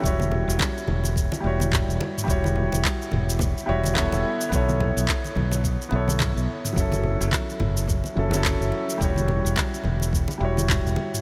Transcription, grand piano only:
X:1
M:4/4
L:1/16
Q:"Swing 16ths" 1/4=107
K:Edor
V:1 name="Grand piano"
[G,EFc]8- [G,EFc]2 [G,EFc]6 | [G,EFc]8- [G,EFc]2 [G,EFc]2 [B,EAc]4 | [B,EAc]8- [B,EAc]2 [B,EAc]6 | [F,CEA]8- [F,CEA]2 [F,CEA] [F,CEA]4- [F,CEA] |
[G,EFc]8- [G,EFc]2 [G,EFc]6 |]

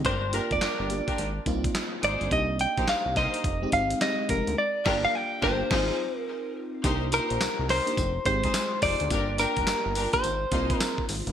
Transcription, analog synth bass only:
X:1
M:4/4
L:1/16
Q:"Swing 16ths" 1/4=106
K:Cm
V:1 name="Analog synth bass" clef=bass
G,,,3 F,,, z G,,,2 z A,,,2 C,,2 z2 A,,, G,,, | C,,3 B,,, z C,,2 z F,,,2 A,,,2 z2 F,,, D,, | z2 G,,,2 z2 G,,,2 A,,,2 z6 | C,,3 B,,, z C,,2 z F,,,2 A,,,2 z2 F,,, D,, |
G,,,3 F,,, G,,, G,,,2 z A,,,2 C,,2 z2 A,,, G,,, |]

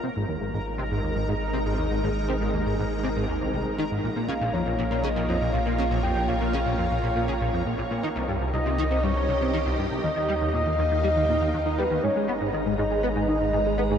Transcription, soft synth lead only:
X:1
M:4/4
L:1/8
Q:1/4=120
K:Bbdor
V:1 name="Soft synth lead"
z8 | z8 | z f d2 e2 f2 | g f6 z |
z2 e2 d3 z | e6- e _c | [K:G#dor] c2 z d4 G |]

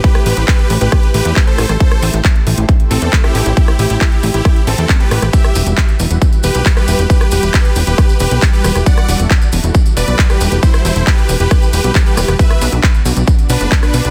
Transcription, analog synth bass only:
X:1
M:4/4
L:1/16
Q:1/4=136
K:Em
V:1 name="Analog synth bass" clef=bass
z2 A,,, A,,, z2 A,,, A,,, z2 A,,, E,, z2 A,,, A,,, | z2 A,,, A,,, z2 A,,, A,,, z2 A,,, E,, z2 A,,, A,,, | z2 A,,, A,,, z2 A,,, A,,, z2 A,,, E,, z2 A,,, A,,, | z2 E,,, E,,, z2 E,,, E,,, z2 E,,, B,,, z2 E,,, E,,, |
z2 E,,, E,,, z2 E,,, E,,, z2 E,,, B,,, z2 E,,, E,,, | z2 E,,, E,,, z2 E,,, E,,, z2 E,,, B,,, z2 E,,, E,,, | z2 E,,, E,,, z2 E,,, E,,, z2 E,,, B,,, z2 E,,, E,,, | z2 B,,, B,,, z2 B,,, B,,, z2 B,,, F,,, z2 B,,, B,,, |]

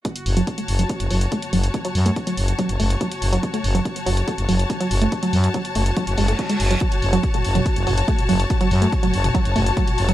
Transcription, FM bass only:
X:1
M:4/4
L:1/16
Q:1/4=142
K:F#m
V:1 name="FM bass" clef=bass
z2 F,,, z3 F,,, z2 F,,, F,,, z3 F,,, z | z2 F,, z3 F,,, z2 F,,, F,,, z3 F,,, z | z2 F,,, z3 F,,, z2 F,,, F,,, z3 F,,, z | z2 F,, z3 F,,, z2 F,,, F,,, z3 F,,, z |
z2 F,,, z3 F,,, z2 F,,, F,,, z3 F,,, z | z2 F,, z3 F,,, z2 F,,, F,,, z3 F,,, z |]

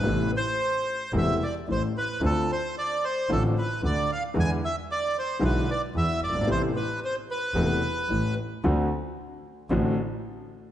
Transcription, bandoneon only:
X:1
M:4/4
L:1/8
Q:1/4=112
K:Am
V:1 name="Bandoneon"
B c3 e d c B | A c d c A B d f | ^g e d c B d e d | c B c B4 z |
z8 |]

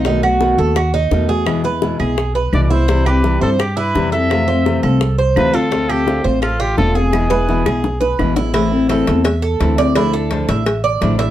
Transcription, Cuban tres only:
X:1
M:4/4
L:1/8
Q:1/4=170
K:Am
V:1 name="Cuban tres"
^D ^F2 A F D2 ^G- | ^G B2 G2 B2 E | E G2 c G E2 A- | A c2 A2 c2 F |
F A2 c A F2 ^G- | ^G B2 G2 B2 E | E2 A2 e A2 d | E A2 e2 d2 e |]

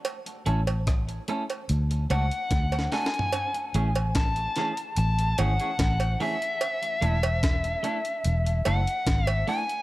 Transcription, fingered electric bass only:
X:1
M:4/4
L:1/16
Q:1/4=73
K:A
V:1 name="Fingered electric bass" clef=bass
z2 A,,,4 z2 D,,2 C,, z D,,2 z2 | z2 A,,,4 z2 A,,,2 G,,, z A,,,2 z2 | z2 E,,,4 z2 E,,,2 F,,, z G,,,2 z2 |]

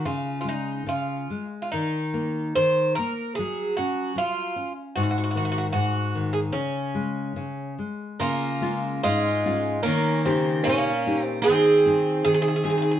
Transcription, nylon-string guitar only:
X:1
M:2/4
L:1/8
Q:1/4=74
K:Db
V:1 name="Nylon-string guitar" clef=bass
D, A, D, A, | E, B, E, B, | G, D G, D | A,, E, A,, E, |
D, A, D, A, | D, [A,DF] A,, [A,DF] | E, [D,E=G] B,, [DEG] | E, [CEA] E, [CEA] |]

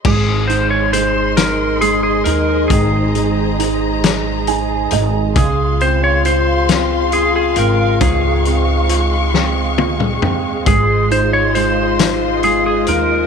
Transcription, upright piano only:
X:1
M:6/8
L:1/8
Q:3/8=45
K:Ab
V:1 name="Upright piano"
A, E A, E A, E | E, A, E A, [Ea] [A,e] | D, C F C F C | A,, C F C F C |
A, E A, E A, E |]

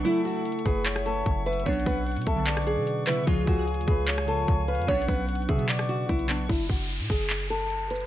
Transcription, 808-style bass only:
X:1
M:4/4
L:1/16
Q:1/4=149
K:F#m
V:1 name="808-style bass" clef=bass
z6 F,,,6 F,,,4 | B,,,2 B,,,3 B,, B,,,4- B,,, B,,4- B,, | C,,2 C,,3 D,, C,,6 C,,3 ^E,, | B,,,2 B,,,4 B,,6 B,,,4 |
F,,,2 F,,,3 A,, F,,,8- F,,,2 |]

